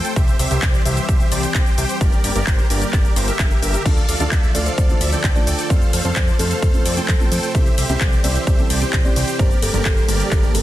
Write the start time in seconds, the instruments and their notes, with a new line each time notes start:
Already playing: analog synth pad C3 F3 A3 F4, supersaw synth A4 C5 G5
0.05 closed hi-hat, shaker
0.16 analog synth bass C2, analog synth pad E3 G3 C4 G4, supersaw synth G4 E5, kick, closed hi-hat, shaker
0.28 closed hi-hat, shaker
0.39 analog synth bass C2, supersaw synth G4 C5 E5, open hi-hat, shaker
0.51 analog synth bass C2, supersaw synth G4 C5 E5, closed hi-hat, shaker
0.62 analog synth bass C2, kick, clap, closed hi-hat, shaker
0.74 closed hi-hat, shaker
0.86 analog synth bass C2, supersaw synth G4 C5 E5, open hi-hat, shaker
0.97 closed hi-hat, shaker
1.09 analog synth bass C2, supersaw synth G4 C5 E5, kick, closed hi-hat, shaker
1.20 closed hi-hat, shaker
1.32 analog synth bass C2, supersaw synth G4 C5 D5, open hi-hat, shaker
1.43 supersaw synth G4 C5 G5, closed hi-hat, shaker
1.55 analog synth bass C2, supersaw synth G4 C5, kick, clap, closed hi-hat, shaker
1.66 closed hi-hat, shaker
1.78 analog synth bass C2, supersaw synth G4 C5 G5, open hi-hat, shaker
1.89 closed hi-hat, shaker
2.01 analog synth bass G1, analog synth pad D3 A#3, supersaw synth A#4 D5, kick, closed hi-hat, shaker
2.12 closed hi-hat, shaker
2.24 analog synth bass G1, supersaw synth G4 A#4 D5, open hi-hat, shaker
2.36 analog synth bass G1, supersaw synth G4 A#4 D5, closed hi-hat, shaker
2.47 analog synth bass G1, supersaw synth C5, kick, clap, closed hi-hat, shaker
2.59 closed hi-hat, shaker
2.70 analog synth bass G1, supersaw synth G4 A#4 D5, open hi-hat, shaker
2.82 closed hi-hat, shaker
2.93 analog synth bass G1, supersaw synth G4 D5, kick, clap, closed hi-hat, shaker
3.05 closed hi-hat, shaker
3.16 analog synth bass G1, supersaw synth G4 A#4 C5, open hi-hat, shaker
3.28 supersaw synth G4 A#4 E5, closed hi-hat, shaker
3.39 analog synth bass G1, supersaw synth G4 A#4 E5, kick, clap, closed hi-hat, shaker
3.51 closed hi-hat, shaker
3.62 analog synth bass G1, supersaw synth G4 A#4 E5, open hi-hat, shaker
3.74 closed hi-hat, shaker
3.85 analog synth bass D2, felt piano D3 A3 D4 F4 A4, analog synth pad F3 A3 F4, supersaw synth D5 F5, kick, closed hi-hat, crash, ride, shaker
3.97 closed hi-hat, shaker
4.09 analog synth bass D2, supersaw synth A4 D5 F5, open hi-hat, ride, shaker
4.20 analog synth bass D2, felt piano D3 A3 D4 F4 A4, supersaw synth A4 D5 F5, closed hi-hat, shaker
4.32 analog synth bass D2, supersaw synth D5 E5, kick, clap, closed hi-hat, ride, shaker
4.43 closed hi-hat, shaker
4.54 analog synth bass D2, felt piano D3 A3 D4 F4 A4, supersaw synth A4 D5 F5, kalimba D5, open hi-hat, ride, shaker
4.66 kalimba C5, closed hi-hat, shaker
4.78 analog synth bass D2, supersaw synth A4 D5 F5, kalimba C5, kick, closed hi-hat, ride, shaker
4.89 felt piano D3 A3 D4 F4 C5, closed hi-hat, shaker
5.01 analog synth bass D2, supersaw synth A4 D5 E5, open hi-hat, ride, shaker
5.12 felt piano D3 A3 D4 F4 A4, supersaw synth A4 D5 G5, closed hi-hat, shaker
5.24 analog synth bass D2, supersaw synth D5 G5, kick, clap, closed hi-hat, ride, shaker
5.35 felt piano D3 A3 D4 F4 A4, kalimba D5, closed hi-hat, shaker
5.47 analog synth bass D2, supersaw synth A4 D5 G5, kalimba D5, open hi-hat, ride, shaker
5.59 closed hi-hat, shaker
5.70 analog synth bass F2, analog synth pad C3 A3 F4, felt piano A3 C4 F4 A4, supersaw synth A4 C5 F5, kick, closed hi-hat, ride, shaker
5.82 closed hi-hat, shaker
5.93 analog synth bass F2, supersaw synth A4 C5 F5, open hi-hat, ride, shaker
6.04 analog synth bass F2, felt piano A3 C4 F4 A4, supersaw synth A4 C5 F5, kalimba C5, closed hi-hat, shaker
6.16 analog synth bass F2, supersaw synth A4 C5 D5, kick, clap, closed hi-hat, ride, shaker
6.28 closed hi-hat, shaker
6.39 analog synth bass F2, felt piano A3 C4 F4 A4, kalimba A4, supersaw synth A4 C5 F5, open hi-hat, ride, shaker
6.51 kalimba C5, closed hi-hat, shaker
6.62 analog synth bass F2, supersaw synth A4 C5, kick, closed hi-hat, ride, shaker
6.73 felt piano A3 C4 F4 C5, closed hi-hat, shaker
6.86 analog synth bass F2, supersaw synth A4 C5 D5, open hi-hat, ride, shaker
6.96 felt piano A3 C4 F4 A4, supersaw synth A4 C5 G5, closed hi-hat, shaker
7.08 analog synth bass F2, supersaw synth A4 C5, kick, clap, closed hi-hat, ride, shaker
7.20 felt piano A3 C4 F4 A4, closed hi-hat, shaker
7.32 analog synth bass F2, supersaw synth A4 C5 G5, kalimba C5, open hi-hat, ride, shaker
7.43 kalimba C5, closed hi-hat, shaker
7.54 analog synth bass C2, felt piano C3 G3 C4 E4 G4, analog synth pad E3 G3 C4 G4, supersaw synth G4 E5, kick, closed hi-hat, ride, shaker
7.66 closed hi-hat, shaker
7.78 analog synth bass C2, supersaw synth G4 C5 E5, open hi-hat, ride, shaker
7.89 analog synth bass C2, felt piano C3 G3 C4 E4 G4, supersaw synth G4 C5 E5, closed hi-hat, shaker
8.01 analog synth bass C2, supersaw synth G4 C5 D5, kick, clap, closed hi-hat, ride, shaker
8.12 closed hi-hat, shaker
8.23 analog synth bass C2, felt piano C3 G3 C4 E4 G4, supersaw synth G4 C5 E5, kalimba D5, open hi-hat, ride, shaker
8.35 kalimba C5, closed hi-hat, shaker
8.47 analog synth bass C2, supersaw synth G4 C5 E5, kalimba C5, kick, closed hi-hat, ride, shaker
8.58 felt piano C3 G3 C4 E4 A4, closed hi-hat, shaker
8.70 analog synth bass C2, supersaw synth G4 C5 D5, open hi-hat, ride, shaker
8.81 felt piano C3 G3 C4 E4 G4, supersaw synth G4 C5 G5, closed hi-hat, shaker
8.93 analog synth bass C2, supersaw synth G4 G5, kick, clap, closed hi-hat, ride, shaker
9.04 felt piano C3 G3 C4 E4 G4, kalimba D5, closed hi-hat, shaker
9.16 analog synth bass C2, supersaw synth G4 C5 G5, kalimba D5, open hi-hat, ride, shaker
9.28 closed hi-hat, shaker
9.39 analog synth bass G1, felt piano G2 G3 A#3 D4 G4, analog synth pad D3 A#3, supersaw synth G4 A#4 D5, kalimba C5, kick, closed hi-hat, ride, shaker
9.51 closed hi-hat, shaker
9.62 analog synth bass G1, supersaw synth G4 A#4 D5, kalimba A4, open hi-hat, ride, shaker
9.73 analog synth bass G1, felt piano G2 G3 A#3 D4 G4, supersaw synth G4 A#4 D5, kalimba A4, closed hi-hat, shaker
9.85 analog synth bass G1, supersaw synth C5, kick, clap, closed hi-hat, ride, shaker
9.97 closed hi-hat, shaker
10.08 analog synth bass G1, felt piano G2 G3 A#3 D4 G4, supersaw synth G4 A#4 D5, kalimba G4, open hi-hat, ride, shaker
10.20 kalimba G4, closed hi-hat, shaker
10.31 analog synth bass G1, supersaw synth G4, kick, clap, closed hi-hat, ride, shaker
10.43 felt piano G2 G3 A#3 D4 A4, closed hi-hat, shaker
10.54 analog synth bass G1, felt piano G2 G3 A#3 D4 A4, open hi-hat, ride, shaker